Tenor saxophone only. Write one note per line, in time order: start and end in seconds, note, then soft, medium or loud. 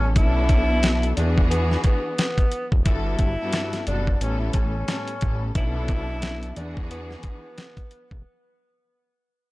0.00 0.12 C#4 medium
0.17 1.14 E4 loud
1.16 1.47 D4 medium
1.49 1.81 B3 medium
1.86 2.69 B3 medium
2.86 3.83 E4 loud
3.88 4.18 D4 medium
4.22 4.39 C#4 medium
4.39 4.52 E4 medium
4.54 5.51 C#4 medium
5.56 6.53 E4 loud
6.57 6.87 D4 medium
6.91 7.21 B3 medium
7.24 8.21 B3 loud